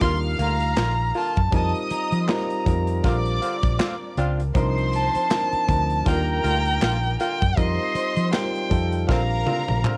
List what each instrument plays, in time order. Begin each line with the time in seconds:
0.00 fingered electric bass D#2, horn section D3 A#3 F4, grand piano G3 D4 D#4 F4 A#4, violin section F5 F6, violin C6, kick, snare, closed hi-hat
0.39 fingered electric bass D2, horn section D3 A#3 F4, violin A#5, closed hi-hat
0.60 closed hi-hat
0.76 fingered electric bass A#1, horn section D3 A#3 F4, snare, clap, closed hi-hat
1.14 horn section D3 A#3 F4, violin A5, open hi-hat
1.37 fingered electric bass F#2, kick, closed hi-hat
1.51 fingered electric bass F2, grand piano G3 C4 D#4 F4 A#4, violin section D#5 D#6, kick, closed hi-hat
1.55 violin A5
1.75 closed hi-hat
1.91 violin A#5, muted fingered electric bass stroke, closed hi-hat
2.12 fingered electric bass F3, closed hi-hat
2.24 grand piano G3 C4, violin C6
2.28 grand piano D#4 F4 A#4, violin A#5, snare, clap, closed hi-hat
2.50 closed hi-hat
2.65 fingered electric bass F2, grand piano G3 C4 D#4 F4 A#4, kick, closed hi-hat
2.87 closed hi-hat
3.03 fingered electric bass A#1, horn section D3 C4 F4, grand piano G3 C4 D4 F4 A#4, violin section D5 D6, kick, snare, closed hi-hat
3.25 closed hi-hat
3.41 horn section D3 C4 F4, closed hi-hat
3.63 fingered electric bass A#1, kick, closed hi-hat
3.79 horn section D3 C4 F4, snare, clap, closed hi-hat
4.17 fingered electric bass C#2, horn section C4 D4 F4, closed hi-hat
4.40 closed hi-hat
4.54 fingered electric bass C2, grand piano F3 C4 D4 D#4 A#4, violin section C5 C6, kick, closed hi-hat
4.78 closed hi-hat
4.93 violin A5, closed hi-hat
5.15 muted fingered electric bass stroke, closed hi-hat
5.29 grand piano F3 C4 D4 D#4 A#4, snare, clap, closed hi-hat
5.53 muted fingered electric bass stroke, closed hi-hat
5.67 fingered electric bass D2, grand piano F3 C4 D4 D#4 A#4, kick, closed hi-hat
5.90 closed hi-hat
6.04 fingered electric bass D#2, horn section D3 A#3 F4, grand piano G3 D4 D#4 F4 A#4, violin section A#4 A#5, violin G5, kick, snare, closed hi-hat
6.28 closed hi-hat
6.44 fingered electric bass D2, horn section D3 A#3 F4, closed hi-hat
6.65 closed hi-hat
6.81 fingered electric bass A#1, horn section D3 A#3 F4, snare, clap, closed hi-hat
7.20 horn section D3 A#3 F4, violin G5, closed hi-hat
7.42 fingered electric bass F#2, kick, closed hi-hat
7.56 fingered electric bass F2, grand piano G3 C4 D#4 F4 A#4, violin section C5 C6, violin D#5, kick, closed hi-hat
7.95 muted fingered electric bass stroke, closed hi-hat
8.17 fingered electric bass F3, closed hi-hat
8.31 grand piano G3 C4 D#4 F4 A#4, violin G5, snare, clap, closed hi-hat
8.55 closed hi-hat
8.69 fingered electric bass F2, grand piano G3 C4 D#4 F4 A4, kick, closed hi-hat
8.92 closed hi-hat
9.07 fingered electric bass A#1, horn section D3 C4 F4, grand piano G3 C4 D4 F4 A#4, violin section A#4 A#5, violin F5, kick, snare
9.46 horn section D3 C4 F4, high tom
9.68 fingered electric bass A#1, high tom
9.84 horn section D3 C4 F4, clap, mid tom